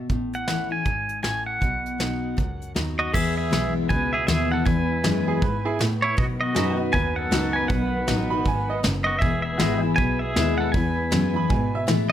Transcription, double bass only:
0.10 0.73 A1 medium
0.86 1.18 G#1 medium
1.24 1.56 A1 medium
1.62 1.93 B1 medium
2.00 2.32 B1 medium
2.38 2.70 C#2 medium
2.76 3.08 D#2 medium
3.14 3.36 E2 medium
3.38 3.51 E2 soft
3.52 3.89 B1 medium
3.91 4.27 C#2 medium
4.28 4.65 D#2 loud
4.67 5.03 E2 medium
5.04 5.41 F#2 medium
5.42 5.79 G#2 medium
5.80 6.17 A2 loud
6.18 6.55 B2 medium
6.56 6.93 F#2 medium
6.94 7.30 D#2 medium
7.31 7.68 C#2 medium
7.70 8.07 B1 medium
8.08 8.45 A1 loud
8.46 8.83 G#1 medium
8.84 9.21 F#1 loud
9.22 9.59 E1 medium
9.60 9.97 G#1 medium
9.98 10.35 B1 medium
10.36 10.73 D#2 loud
10.75 11.11 E2 medium
11.12 11.49 F#2 medium
11.51 11.87 G#2 medium
11.89 12.12 A2 loud

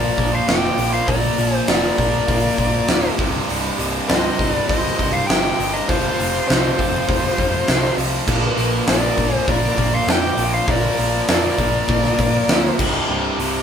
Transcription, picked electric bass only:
0.18 0.39 A#1 medium
0.48 0.69 F1 medium
0.78 0.99 A#1 loud
1.08 1.29 A#1 loud
1.38 1.59 A#1 medium
1.68 1.89 F1 medium
1.98 2.19 A#1 medium
2.28 2.49 A#1 loud
2.58 2.79 A#1 medium
2.88 3.09 D1 medium
3.19 3.40 C1 loud
3.49 3.70 C1 loud
3.79 4.00 C1 medium
4.09 4.30 C1 loud
4.39 4.60 C1 loud
4.69 4.90 C1 loud
4.99 5.20 C1 medium
5.29 5.50 G1 medium
5.59 5.80 G1 loud
5.89 6.10 F1 loud
6.19 6.40 F1 medium
6.49 6.70 C2 medium
6.79 7.00 F1 medium
7.08 7.29 F1 medium
7.38 7.59 F2 medium
7.68 7.89 C2 medium
7.98 8.19 C2 medium
8.28 8.49 A#1 loud
8.58 8.79 A#1 medium
8.88 9.09 A#1 medium
9.18 9.39 A#1 medium
9.48 9.69 A#1 medium
9.78 9.99 A#1 medium
10.07 10.29 F2 medium
10.37 10.59 A#1 medium
10.68 10.89 A#1 loud
10.99 11.20 A#1 medium
11.29 11.50 F2 medium
11.58 11.80 A#1 loud
11.89 12.10 A#1 loud
12.19 12.40 A#2 medium
12.48 12.69 D2 medium
12.79 13.00 C1 loud
13.09 13.30 C1 loud
13.37 13.59 C1 medium

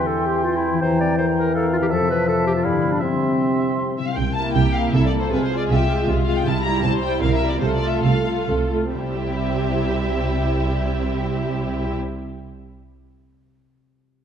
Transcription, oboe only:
0.00 0.77 G5 soft
0.80 1.16 G5 soft
1.17 1.53 G5 soft
1.55 1.92 F5 soft
1.91 2.27 E5 soft
2.27 2.65 E5 soft
2.63 3.02 F5 soft
3.00 3.97 E5 soft

